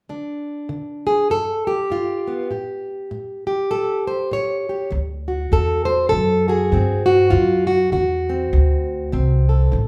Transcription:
0.09 0.65 D3 medium
0.09 1.27 D4 soft
0.69 1.25 D3 medium
1.07 1.30 G#4 medium
1.30 1.86 G2 medium
1.30 1.67 A4 medium
1.67 2.50 G4 medium
1.90 2.46 G2 medium
1.90 2.51 F4 medium
2.27 2.48 B3 soft
2.51 3.06 A2 medium
2.51 3.46 G4 soft
3.11 3.67 A2 medium
3.47 4.68 G4 medium
3.71 4.27 A2 medium
3.71 4.07 A4 medium
4.07 4.32 C5 medium
4.31 4.87 A2 medium
4.31 4.93 C#5 medium
4.69 4.90 G4 soft
4.90 5.50 D2 medium
4.90 5.47 D3 medium
5.28 6.48 F#4 soft
5.52 6.10 E2 medium
5.52 6.08 D3 medium
5.52 5.85 A4 medium
5.85 6.09 C5 medium
6.09 6.70 F#2 medium
6.09 6.68 D3 medium
6.09 6.49 A4 medium
6.48 7.06 F#4 soft
6.48 7.05 G#4 medium
6.72 7.31 G2 medium
6.72 7.28 D3 medium
6.72 7.36 C4 soft
7.06 7.66 F#4 medium
7.30 7.90 F#2 medium
7.30 7.88 D3 medium
7.30 7.68 F4 medium
7.67 7.91 F#4 medium
7.92 8.51 E2 medium
7.92 8.48 D3 medium
7.92 9.49 F#4 medium
8.30 9.13 C4 soft
8.53 9.11 D2 medium
8.53 9.08 D3 medium
9.12 9.71 C2 medium
9.12 9.68 D3 medium
9.12 9.75 C4 soft
9.49 9.88 A4 soft
9.72 9.88 A1 medium
9.72 9.88 D3 medium

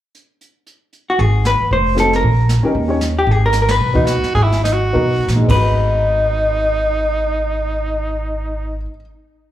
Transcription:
0.15 closed hi-hat soft
0.41 closed hi-hat soft
0.67 closed hi-hat soft
0.93 closed hi-hat soft
1.10 1.19 F#4 medium
1.19 1.57 G#1 medium
1.19 1.46 G#4 medium
1.19 brush sweep soft
1.19 kick soft
1.45 1.72 B4 medium
1.45 snare medium
1.45 hi-hat pedal medium
1.60 muted upright bass stroke soft
1.71 2.20 F1 medium
1.71 1.96 C5 medium
1.71 brush sweep soft
1.71 kick soft
1.95 2.22 C4 medium
1.95 2.22 D#4 soft
1.95 2.23 F#4 soft
1.95 2.23 A4 medium
1.95 snare soft
1.95 hi-hat pedal soft
2.00 2.14 A4 medium
2.13 2.88 A#4 medium
2.13 snare soft
2.23 2.61 A#1 medium
2.23 brush sweep soft
2.23 kick soft
2.49 snare medium
2.49 hi-hat pedal soft
2.63 2.73 C#4 medium
2.63 2.73 D#4 medium
2.63 2.74 G4 medium
2.63 2.74 A#4 medium
2.75 3.24 D#2 medium
2.75 brush sweep soft
2.75 kick soft
2.88 2.98 C#4 medium
2.88 2.99 D#4 medium
2.88 2.99 G4 medium
2.88 3.00 C#5 medium
3.01 snare medium
3.01 hi-hat pedal soft
3.19 3.31 G4 medium
3.27 3.76 G#1 medium
3.27 brush sweep soft
3.27 kick soft
3.31 3.44 G#4 medium
3.46 3.61 A#4 medium
3.52 snare medium
3.52 hi-hat pedal medium
3.62 3.69 A#4 medium
3.68 5.25 B4 medium
3.68 snare medium
3.68 ride medium
3.78 4.19 B1 medium
3.78 brush sweep soft
3.94 4.31 B3 medium
3.94 4.32 D#4 medium
3.94 4.07 D#4 medium
3.94 4.32 F#4 medium
3.94 4.32 B4 medium
3.94 kick soft
4.06 4.34 F#4 medium
4.06 snare medium
4.06 hi-hat pedal soft
4.23 muted upright bass stroke soft
4.23 snare soft
4.35 4.92 G#1 medium
4.35 4.45 G#4 loud
4.35 brush sweep soft
4.35 kick soft
4.43 4.63 E4 medium
4.52 snare soft
4.64 4.75 D#4 medium
4.64 snare medium
4.64 hi-hat pedal medium
4.73 5.38 F#4 medium
4.93 5.26 B1 medium
4.93 5.44 B3 medium
4.93 5.44 D#4 medium
4.93 5.44 F#4 medium
4.93 5.44 A#4 medium
4.93 brush sweep soft
4.93 kick soft
5.28 5.47 A#1 medium
5.28 snare soft
5.28 hi-hat pedal medium
5.36 8.75 G#2 medium
5.42 8.82 G#3 soft
5.48 8.85 G#1 medium
5.48 8.88 B3 medium
5.48 8.85 D#4 medium
5.48 8.87 B4 medium
5.48 kick soft
5.48 crash medium
5.54 8.94 F#4 medium
5.60 9.00 B4 medium

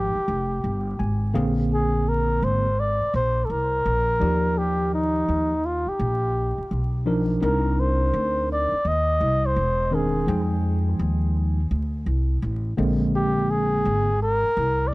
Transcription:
0.00 0.12 G#1 medium
0.00 0.16 F3 medium
0.00 0.17 G#3 medium
0.00 0.17 D#4 medium
0.00 0.17 G4 medium
0.00 1.36 G4 medium
0.15 muted upright bass stroke soft
0.28 0.62 F1 medium
0.64 0.97 G1 medium
0.99 1.33 G#1 medium
0.99 1.32 G#5 medium
1.34 2.38 A#1 medium
1.34 2.66 D3 medium
1.34 2.66 A#3 medium
1.34 2.67 C4 medium
1.34 2.67 G#4 medium
1.34 1.68 F5 medium
1.74 2.10 G#4 medium
2.09 2.45 A#4 loud
2.42 2.98 G#1 medium
2.42 2.81 C5 loud
2.80 3.14 D5 loud
3.01 muted upright bass stroke soft
3.14 3.47 A#1 medium
3.14 3.46 C5 loud
3.45 3.52 A4 medium
3.50 3.83 C2 medium
3.50 4.59 A#4 loud
3.85 4.19 A#1 medium
4.20 5.24 D#2 medium
4.20 5.52 F3 medium
4.20 5.52 D#4 medium
4.20 5.53 G4 medium
4.20 5.52 D5 medium
4.58 4.93 G4 medium
4.94 5.67 D#4 medium
5.28 5.84 D#2 medium
5.65 5.90 F4 medium
5.87 6.94 G4 medium
5.87 muted upright bass stroke soft
5.99 6.55 A#1 medium
6.58 muted upright bass stroke soft
6.71 7.39 B1 medium
7.06 7.39 F3 medium
7.06 7.39 D4 medium
7.06 7.39 D#4 medium
7.06 7.40 A#4 medium
7.41 8.10 C2 loud
7.41 8.74 C4 medium
7.41 8.74 D4 medium
7.41 8.73 D#4 medium
7.41 8.74 A#4 medium
7.41 7.81 A#4 medium
7.80 8.50 C5 loud
8.14 8.69 D2 medium
8.52 8.89 D5 loud
8.72 muted upright bass stroke soft
8.85 9.19 D#2 medium
8.85 9.47 D#5 loud
9.21 9.54 C2 medium
9.46 9.96 C5 loud
9.56 10.24 E1 medium
9.91 10.24 D#3 medium
9.91 10.25 C4 medium
9.91 10.25 D4 medium
9.91 10.65 G#4 medium
9.91 10.25 A#4 medium
10.27 10.96 F2 loud
10.27 11.59 F3 medium
10.27 11.59 G#3 medium
10.27 11.59 D#4 medium
10.27 11.60 G5 medium
10.99 11.67 D#2 medium
11.71 12.05 D2 medium
12.06 12.40 C2 medium
12.42 12.76 A1 medium
12.77 13.81 A#1 medium
12.77 14.09 D3 medium
12.77 14.10 G#3 loud
12.77 14.09 A#3 medium
12.77 14.10 C4 medium
13.15 13.52 G4 loud
13.51 14.21 G#4 loud
13.85 14.41 G#1 medium
14.22 14.89 A#4 loud
14.44 muted upright bass stroke soft
14.57 14.90 C2 medium
14.88 14.94 D5 medium

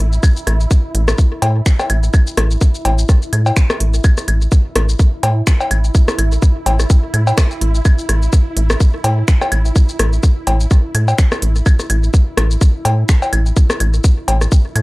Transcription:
0.00 0.18 A1 medium
0.00 4.03 E4 medium
0.13 shaker soft
0.23 kick loud
0.23 claves medium
0.23 shaker medium
0.37 shaker soft
0.47 0.66 A1 loud
0.47 cross-stick soft
0.47 closed hi-hat medium
0.47 claves medium
0.60 shaker soft
0.71 kick loud
0.71 shaker medium
0.95 1.14 A1 loud
0.95 closed hi-hat medium
1.08 cross-stick medium
1.08 shaker soft
1.18 kick loud
1.18 shaker medium
1.42 1.61 A2 medium
1.42 closed hi-hat medium
1.42 cowbell medium
1.66 finger snap loud
1.66 kick loud
1.66 shaker medium
1.79 cross-stick soft
1.79 cowbell medium
1.79 shaker soft
1.90 2.09 A1 medium
1.90 closed hi-hat medium
1.90 claves medium
2.03 shaker soft
2.14 kick loud
2.14 claves medium
2.14 shaker medium
2.27 shaker soft
2.37 2.56 A1 medium
2.37 cross-stick medium
2.37 closed hi-hat medium
2.37 claves medium
2.51 shaker soft
2.61 kick loud
2.61 shaker medium
2.75 shaker soft
2.85 3.04 A1 loud
2.85 closed hi-hat medium
2.85 cowbell medium
2.98 shaker soft
3.09 kick loud
3.09 cross-stick soft
3.09 shaker medium
3.22 shaker soft
3.33 3.52 A2 medium
3.33 closed hi-hat medium
3.33 claves medium
3.46 cowbell medium
3.46 shaker soft
3.57 finger snap loud
3.57 kick loud
3.57 shaker medium
3.70 cross-stick medium
3.70 shaker soft
3.80 3.99 A1 medium
3.80 closed hi-hat medium
3.94 shaker soft
4.04 14.82 E4 medium
4.04 kick loud
4.04 claves medium
4.04 shaker medium
4.17 cross-stick soft
4.17 shaker soft
4.28 4.47 A1 medium
4.28 closed hi-hat medium
4.28 claves medium
4.41 shaker soft
4.52 kick loud
4.52 shaker medium
4.76 4.95 A1 loud
4.76 cross-stick medium
4.76 closed hi-hat medium
4.89 shaker soft
4.99 kick loud
4.99 shaker medium
5.23 5.42 A2 medium
5.23 closed hi-hat medium
5.23 cowbell loud
5.47 finger snap loud
5.47 kick loud
5.47 cross-stick soft
5.47 shaker medium
5.60 cowbell loud
5.60 shaker soft
5.71 5.90 A1 medium
5.71 closed hi-hat loud
5.71 claves medium
5.84 shaker soft
5.95 kick loud
5.95 shaker medium
6.08 cross-stick medium
6.08 shaker soft
6.18 6.37 A1 loud
6.18 closed hi-hat loud
6.18 claves medium
6.32 shaker soft
6.42 kick loud
6.42 shaker medium
6.66 6.85 A1 loud
6.66 closed hi-hat loud
6.66 cowbell medium
6.79 cross-stick soft
6.79 shaker soft
6.90 kick loud
6.90 shaker medium
7.14 7.33 A2 medium
7.14 closed hi-hat loud
7.14 claves medium
7.27 cowbell medium
7.27 shaker soft
7.38 finger snap loud
7.38 kick loud
7.38 cross-stick medium
7.38 shaker medium
7.51 shaker soft
7.61 7.80 A1 medium
7.61 closed hi-hat loud
7.75 shaker soft
7.85 kick loud
7.85 claves medium
7.85 shaker medium
7.99 shaker soft
8.09 8.28 A1 loud
8.09 cross-stick soft
8.09 closed hi-hat loud
8.09 claves medium
8.22 shaker soft
8.33 kick loud
8.33 shaker medium
8.57 8.76 A1 loud
8.57 closed hi-hat loud
8.70 cross-stick medium
8.70 shaker soft
8.80 kick loud
8.80 shaker medium
9.04 9.23 A2 loud
9.04 closed hi-hat loud
9.04 cowbell loud
9.28 finger snap loud
9.28 kick loud
9.28 shaker medium
9.41 cross-stick soft
9.41 cowbell loud
9.41 shaker soft
9.52 9.71 A1 medium
9.52 closed hi-hat loud
9.52 claves medium
9.65 shaker soft
9.76 kick loud
9.76 shaker medium
9.89 shaker soft
9.99 10.18 A1 loud
9.99 cross-stick medium
9.99 closed hi-hat loud
9.99 claves medium
10.13 shaker soft
10.23 kick loud
10.23 shaker medium
10.47 10.66 A1 loud
10.47 closed hi-hat loud
10.47 cowbell medium
10.60 shaker soft
10.71 kick loud
10.71 cross-stick soft
10.71 shaker medium
10.95 11.14 A2 medium
10.95 closed hi-hat medium
10.95 claves medium
11.08 cowbell medium
11.08 shaker soft
11.18 finger snap loud
11.18 kick loud
11.18 shaker medium
11.32 cross-stick medium
11.32 shaker soft
11.42 11.61 A1 medium
11.42 closed hi-hat loud
11.56 shaker soft
11.66 kick loud
11.66 claves medium
11.66 shaker medium
11.79 cross-stick soft
11.79 shaker soft
11.90 12.09 A1 loud
11.90 closed hi-hat medium
11.90 claves medium
12.03 shaker soft
12.14 kick loud
12.14 shaker medium
12.37 12.56 A1 loud
12.37 cross-stick medium
12.37 closed hi-hat loud
12.51 shaker soft
12.61 kick loud
12.61 shaker medium
12.85 13.04 A2 medium
12.85 closed hi-hat medium
12.85 cowbell medium
13.09 finger snap loud
13.09 kick loud
13.09 cross-stick soft
13.09 shaker medium
13.22 cowbell medium
13.22 shaker soft
13.33 13.52 A1 medium
13.33 closed hi-hat medium
13.33 claves medium
13.46 shaker soft
13.57 kick loud
13.57 shaker medium
13.70 cross-stick medium
13.70 shaker soft
13.80 13.99 A1 loud
13.80 closed hi-hat medium
13.80 claves medium
13.94 shaker soft
14.04 kick loud
14.04 shaker medium
14.28 14.47 A1 loud
14.28 closed hi-hat medium
14.28 cowbell medium
14.41 cross-stick soft
14.41 shaker soft
14.52 kick loud
14.52 shaker medium
14.76 14.82 A2 loud
14.76 closed hi-hat medium
14.76 claves medium

